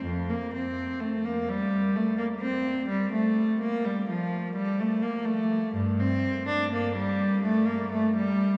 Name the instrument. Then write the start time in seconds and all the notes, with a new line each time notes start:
cello
0.05 F2
0.30 A#3
0.54 C4
1.00 A3
1.25 A#3
1.49 G3
1.96 A3
2.18 A#3
2.40 C4
2.88 G3
3.12 A3
3.61 A#3
3.85 G3
4.09 F3
4.56 G3
4.80 A3
5.02 A#3
5.25 A3
5.75 G2
6.00 C4
6.48 D4
6.72 A#3
6.95 G3
7.43 A3
7.67 A#3
7.91 A3
8.16 G3